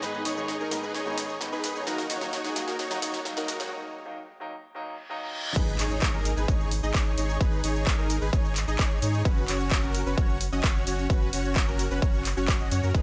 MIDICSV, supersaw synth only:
0, 0, Header, 1, 2, 480
1, 0, Start_track
1, 0, Key_signature, 5, "minor"
1, 0, Tempo, 461538
1, 23, Time_signature, 4, 2, 24, 8
1, 13544, End_track
2, 0, Start_track
2, 0, Title_t, "Supersaw synth"
2, 0, Program_c, 0, 81
2, 23, Note_on_c, 0, 63, 86
2, 24, Note_on_c, 0, 68, 81
2, 24, Note_on_c, 0, 71, 99
2, 227, Note_off_c, 0, 63, 0
2, 227, Note_off_c, 0, 68, 0
2, 227, Note_off_c, 0, 71, 0
2, 263, Note_on_c, 0, 63, 85
2, 263, Note_on_c, 0, 68, 77
2, 263, Note_on_c, 0, 73, 94
2, 594, Note_off_c, 0, 63, 0
2, 594, Note_off_c, 0, 68, 0
2, 594, Note_off_c, 0, 73, 0
2, 623, Note_on_c, 0, 63, 98
2, 623, Note_on_c, 0, 68, 89
2, 623, Note_on_c, 0, 70, 105
2, 812, Note_off_c, 0, 63, 0
2, 812, Note_off_c, 0, 68, 0
2, 812, Note_off_c, 0, 70, 0
2, 862, Note_on_c, 0, 63, 95
2, 863, Note_on_c, 0, 68, 87
2, 863, Note_on_c, 0, 71, 106
2, 954, Note_off_c, 0, 63, 0
2, 954, Note_off_c, 0, 68, 0
2, 954, Note_off_c, 0, 71, 0
2, 983, Note_on_c, 0, 63, 95
2, 983, Note_on_c, 0, 68, 87
2, 983, Note_on_c, 0, 73, 105
2, 1194, Note_off_c, 0, 63, 0
2, 1194, Note_off_c, 0, 68, 0
2, 1194, Note_off_c, 0, 73, 0
2, 1223, Note_on_c, 0, 63, 77
2, 1223, Note_on_c, 0, 68, 69
2, 1223, Note_on_c, 0, 73, 87
2, 1412, Note_off_c, 0, 63, 0
2, 1412, Note_off_c, 0, 68, 0
2, 1412, Note_off_c, 0, 73, 0
2, 1583, Note_on_c, 0, 68, 89
2, 1584, Note_on_c, 0, 63, 96
2, 1584, Note_on_c, 0, 71, 103
2, 1795, Note_off_c, 0, 63, 0
2, 1795, Note_off_c, 0, 68, 0
2, 1795, Note_off_c, 0, 71, 0
2, 1823, Note_on_c, 0, 73, 91
2, 1824, Note_on_c, 0, 63, 81
2, 1824, Note_on_c, 0, 68, 79
2, 1915, Note_off_c, 0, 63, 0
2, 1915, Note_off_c, 0, 68, 0
2, 1915, Note_off_c, 0, 73, 0
2, 1943, Note_on_c, 0, 63, 89
2, 1943, Note_on_c, 0, 66, 83
2, 1943, Note_on_c, 0, 70, 96
2, 2147, Note_off_c, 0, 63, 0
2, 2147, Note_off_c, 0, 66, 0
2, 2147, Note_off_c, 0, 70, 0
2, 2183, Note_on_c, 0, 63, 87
2, 2183, Note_on_c, 0, 66, 77
2, 2183, Note_on_c, 0, 73, 97
2, 2514, Note_off_c, 0, 63, 0
2, 2514, Note_off_c, 0, 66, 0
2, 2514, Note_off_c, 0, 73, 0
2, 2543, Note_on_c, 0, 63, 99
2, 2543, Note_on_c, 0, 66, 91
2, 2543, Note_on_c, 0, 68, 108
2, 2732, Note_off_c, 0, 63, 0
2, 2732, Note_off_c, 0, 66, 0
2, 2732, Note_off_c, 0, 68, 0
2, 2784, Note_on_c, 0, 63, 97
2, 2784, Note_on_c, 0, 66, 88
2, 2784, Note_on_c, 0, 70, 107
2, 2875, Note_off_c, 0, 63, 0
2, 2875, Note_off_c, 0, 66, 0
2, 2875, Note_off_c, 0, 70, 0
2, 2903, Note_on_c, 0, 63, 94
2, 2903, Note_on_c, 0, 66, 87
2, 2903, Note_on_c, 0, 73, 108
2, 3114, Note_off_c, 0, 63, 0
2, 3114, Note_off_c, 0, 66, 0
2, 3114, Note_off_c, 0, 73, 0
2, 3143, Note_on_c, 0, 63, 79
2, 3143, Note_on_c, 0, 66, 69
2, 3143, Note_on_c, 0, 73, 85
2, 3332, Note_off_c, 0, 63, 0
2, 3332, Note_off_c, 0, 66, 0
2, 3332, Note_off_c, 0, 73, 0
2, 3503, Note_on_c, 0, 63, 96
2, 3503, Note_on_c, 0, 66, 88
2, 3503, Note_on_c, 0, 70, 106
2, 3714, Note_off_c, 0, 63, 0
2, 3714, Note_off_c, 0, 66, 0
2, 3714, Note_off_c, 0, 70, 0
2, 3743, Note_on_c, 0, 63, 83
2, 3743, Note_on_c, 0, 66, 76
2, 3743, Note_on_c, 0, 73, 90
2, 3834, Note_off_c, 0, 63, 0
2, 3834, Note_off_c, 0, 66, 0
2, 3834, Note_off_c, 0, 73, 0
2, 5783, Note_on_c, 0, 63, 90
2, 5783, Note_on_c, 0, 68, 85
2, 5783, Note_on_c, 0, 71, 103
2, 5987, Note_off_c, 0, 63, 0
2, 5987, Note_off_c, 0, 68, 0
2, 5987, Note_off_c, 0, 71, 0
2, 6023, Note_on_c, 0, 63, 87
2, 6023, Note_on_c, 0, 68, 77
2, 6023, Note_on_c, 0, 73, 94
2, 6354, Note_off_c, 0, 63, 0
2, 6354, Note_off_c, 0, 68, 0
2, 6354, Note_off_c, 0, 73, 0
2, 6383, Note_on_c, 0, 63, 96
2, 6383, Note_on_c, 0, 68, 90
2, 6383, Note_on_c, 0, 70, 111
2, 6572, Note_off_c, 0, 63, 0
2, 6572, Note_off_c, 0, 68, 0
2, 6572, Note_off_c, 0, 70, 0
2, 6623, Note_on_c, 0, 63, 97
2, 6624, Note_on_c, 0, 68, 89
2, 6624, Note_on_c, 0, 71, 107
2, 6714, Note_off_c, 0, 63, 0
2, 6715, Note_off_c, 0, 68, 0
2, 6715, Note_off_c, 0, 71, 0
2, 6743, Note_on_c, 0, 63, 96
2, 6743, Note_on_c, 0, 73, 105
2, 6954, Note_off_c, 0, 63, 0
2, 6955, Note_off_c, 0, 73, 0
2, 7103, Note_on_c, 0, 63, 82
2, 7103, Note_on_c, 0, 68, 74
2, 7103, Note_on_c, 0, 75, 90
2, 7194, Note_off_c, 0, 63, 0
2, 7195, Note_off_c, 0, 68, 0
2, 7195, Note_off_c, 0, 75, 0
2, 7223, Note_on_c, 0, 73, 85
2, 7434, Note_off_c, 0, 73, 0
2, 7462, Note_on_c, 0, 63, 76
2, 7462, Note_on_c, 0, 73, 89
2, 7463, Note_on_c, 0, 68, 71
2, 7667, Note_off_c, 0, 63, 0
2, 7667, Note_off_c, 0, 68, 0
2, 7667, Note_off_c, 0, 73, 0
2, 7702, Note_on_c, 0, 63, 89
2, 7702, Note_on_c, 0, 68, 83
2, 7702, Note_on_c, 0, 71, 99
2, 7907, Note_off_c, 0, 63, 0
2, 7907, Note_off_c, 0, 68, 0
2, 7907, Note_off_c, 0, 71, 0
2, 7942, Note_on_c, 0, 63, 86
2, 7942, Note_on_c, 0, 68, 81
2, 7942, Note_on_c, 0, 73, 98
2, 8274, Note_off_c, 0, 63, 0
2, 8274, Note_off_c, 0, 68, 0
2, 8274, Note_off_c, 0, 73, 0
2, 8303, Note_on_c, 0, 63, 99
2, 8303, Note_on_c, 0, 68, 91
2, 8303, Note_on_c, 0, 70, 109
2, 8492, Note_off_c, 0, 63, 0
2, 8492, Note_off_c, 0, 68, 0
2, 8492, Note_off_c, 0, 70, 0
2, 8542, Note_on_c, 0, 68, 90
2, 8542, Note_on_c, 0, 71, 109
2, 8543, Note_on_c, 0, 63, 96
2, 8634, Note_off_c, 0, 63, 0
2, 8634, Note_off_c, 0, 68, 0
2, 8634, Note_off_c, 0, 71, 0
2, 8662, Note_on_c, 0, 63, 95
2, 8662, Note_on_c, 0, 73, 106
2, 8874, Note_off_c, 0, 63, 0
2, 8874, Note_off_c, 0, 73, 0
2, 9022, Note_on_c, 0, 63, 82
2, 9022, Note_on_c, 0, 68, 76
2, 9022, Note_on_c, 0, 75, 90
2, 9114, Note_off_c, 0, 63, 0
2, 9114, Note_off_c, 0, 68, 0
2, 9114, Note_off_c, 0, 75, 0
2, 9141, Note_on_c, 0, 63, 74
2, 9142, Note_on_c, 0, 68, 69
2, 9142, Note_on_c, 0, 73, 84
2, 9353, Note_off_c, 0, 63, 0
2, 9354, Note_off_c, 0, 68, 0
2, 9354, Note_off_c, 0, 73, 0
2, 9382, Note_on_c, 0, 63, 79
2, 9382, Note_on_c, 0, 68, 73
2, 9382, Note_on_c, 0, 73, 87
2, 9587, Note_off_c, 0, 63, 0
2, 9587, Note_off_c, 0, 68, 0
2, 9587, Note_off_c, 0, 73, 0
2, 9622, Note_on_c, 0, 61, 90
2, 9622, Note_on_c, 0, 66, 84
2, 9622, Note_on_c, 0, 71, 99
2, 9826, Note_off_c, 0, 71, 0
2, 9827, Note_off_c, 0, 61, 0
2, 9827, Note_off_c, 0, 66, 0
2, 9862, Note_on_c, 0, 61, 87
2, 9862, Note_on_c, 0, 66, 79
2, 9862, Note_on_c, 0, 73, 96
2, 10194, Note_off_c, 0, 61, 0
2, 10194, Note_off_c, 0, 66, 0
2, 10194, Note_off_c, 0, 73, 0
2, 10223, Note_on_c, 0, 61, 98
2, 10223, Note_on_c, 0, 66, 89
2, 10223, Note_on_c, 0, 70, 107
2, 10412, Note_off_c, 0, 61, 0
2, 10412, Note_off_c, 0, 66, 0
2, 10412, Note_off_c, 0, 70, 0
2, 10463, Note_on_c, 0, 61, 96
2, 10463, Note_on_c, 0, 66, 92
2, 10463, Note_on_c, 0, 71, 106
2, 10554, Note_off_c, 0, 61, 0
2, 10554, Note_off_c, 0, 66, 0
2, 10554, Note_off_c, 0, 71, 0
2, 10583, Note_on_c, 0, 61, 97
2, 10583, Note_on_c, 0, 66, 91
2, 10583, Note_on_c, 0, 73, 106
2, 10794, Note_off_c, 0, 61, 0
2, 10794, Note_off_c, 0, 66, 0
2, 10794, Note_off_c, 0, 73, 0
2, 10943, Note_on_c, 0, 61, 81
2, 10943, Note_on_c, 0, 66, 74
2, 10943, Note_on_c, 0, 75, 92
2, 11034, Note_off_c, 0, 75, 0
2, 11035, Note_off_c, 0, 61, 0
2, 11035, Note_off_c, 0, 66, 0
2, 11062, Note_on_c, 0, 66, 68
2, 11063, Note_on_c, 0, 61, 78
2, 11063, Note_on_c, 0, 73, 83
2, 11274, Note_off_c, 0, 61, 0
2, 11274, Note_off_c, 0, 66, 0
2, 11274, Note_off_c, 0, 73, 0
2, 11303, Note_on_c, 0, 61, 79
2, 11303, Note_on_c, 0, 66, 72
2, 11304, Note_on_c, 0, 73, 85
2, 11507, Note_off_c, 0, 61, 0
2, 11507, Note_off_c, 0, 66, 0
2, 11507, Note_off_c, 0, 73, 0
2, 11543, Note_on_c, 0, 66, 84
2, 11544, Note_on_c, 0, 61, 91
2, 11544, Note_on_c, 0, 71, 98
2, 11747, Note_off_c, 0, 66, 0
2, 11748, Note_off_c, 0, 61, 0
2, 11748, Note_off_c, 0, 71, 0
2, 11783, Note_on_c, 0, 61, 87
2, 11783, Note_on_c, 0, 66, 80
2, 11783, Note_on_c, 0, 73, 95
2, 12114, Note_off_c, 0, 61, 0
2, 12114, Note_off_c, 0, 66, 0
2, 12114, Note_off_c, 0, 73, 0
2, 12143, Note_on_c, 0, 61, 98
2, 12143, Note_on_c, 0, 66, 91
2, 12143, Note_on_c, 0, 70, 110
2, 12332, Note_off_c, 0, 61, 0
2, 12332, Note_off_c, 0, 66, 0
2, 12332, Note_off_c, 0, 70, 0
2, 12383, Note_on_c, 0, 61, 99
2, 12383, Note_on_c, 0, 66, 89
2, 12383, Note_on_c, 0, 71, 108
2, 12474, Note_off_c, 0, 61, 0
2, 12474, Note_off_c, 0, 66, 0
2, 12474, Note_off_c, 0, 71, 0
2, 12503, Note_on_c, 0, 61, 98
2, 12503, Note_on_c, 0, 66, 89
2, 12503, Note_on_c, 0, 73, 105
2, 12714, Note_off_c, 0, 61, 0
2, 12714, Note_off_c, 0, 66, 0
2, 12714, Note_off_c, 0, 73, 0
2, 12863, Note_on_c, 0, 61, 86
2, 12863, Note_on_c, 0, 66, 81
2, 12863, Note_on_c, 0, 73, 96
2, 13074, Note_off_c, 0, 61, 0
2, 13074, Note_off_c, 0, 66, 0
2, 13074, Note_off_c, 0, 73, 0
2, 13103, Note_on_c, 0, 61, 80
2, 13103, Note_on_c, 0, 66, 77
2, 13103, Note_on_c, 0, 75, 90
2, 13194, Note_off_c, 0, 61, 0
2, 13194, Note_off_c, 0, 66, 0
2, 13194, Note_off_c, 0, 75, 0
2, 13223, Note_on_c, 0, 61, 89
2, 13223, Note_on_c, 0, 66, 80
2, 13223, Note_on_c, 0, 73, 101
2, 13325, Note_off_c, 0, 61, 0
2, 13325, Note_off_c, 0, 66, 0
2, 13325, Note_off_c, 0, 73, 0
2, 13343, Note_on_c, 0, 61, 79
2, 13343, Note_on_c, 0, 66, 74
2, 13343, Note_on_c, 0, 70, 85
2, 13434, Note_off_c, 0, 61, 0
2, 13434, Note_off_c, 0, 66, 0
2, 13434, Note_off_c, 0, 70, 0
2, 13463, Note_on_c, 0, 63, 88
2, 13463, Note_on_c, 0, 68, 83
2, 13463, Note_on_c, 0, 71, 100
2, 13544, Note_off_c, 0, 63, 0
2, 13544, Note_off_c, 0, 68, 0
2, 13544, Note_off_c, 0, 71, 0
2, 13544, End_track
0, 0, End_of_file